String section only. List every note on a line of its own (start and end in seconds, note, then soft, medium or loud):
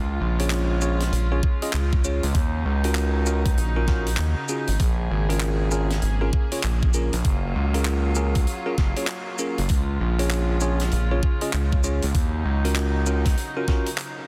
0.00 7.21 C#3 medium
0.00 2.32 G#3 medium
0.00 2.32 F4 medium
2.35 4.78 F#3 medium
2.35 4.77 D#4 medium
4.79 9.66 A#3 medium
4.79 7.22 G#4 medium
7.24 9.67 F#3 medium
7.24 9.67 F4 medium
9.69 14.27 C#3 medium
9.69 12.12 G#3 medium
9.69 12.12 F4 medium
12.14 14.27 F#3 medium
12.14 14.27 D#4 medium